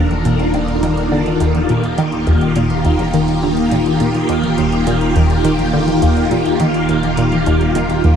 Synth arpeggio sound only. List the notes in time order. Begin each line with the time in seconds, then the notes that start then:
0.25 A#2
0.54 D#2
0.83 D#3
1.12 D3
1.41 D#2
1.70 A#2
1.98 D#3
2.27 D#2
2.56 A#2
2.85 D#2
3.14 D#3
3.43 D3
3.72 A#2
4.01 A#2
4.29 D#2
4.58 D#2
4.87 A#2
5.16 D#2
5.45 D#3
5.73 D3
6.02 D#2
6.31 A#2
6.60 D#3
6.89 D#2
7.18 A#2
7.47 D#2
7.76 D#3
8.05 D#2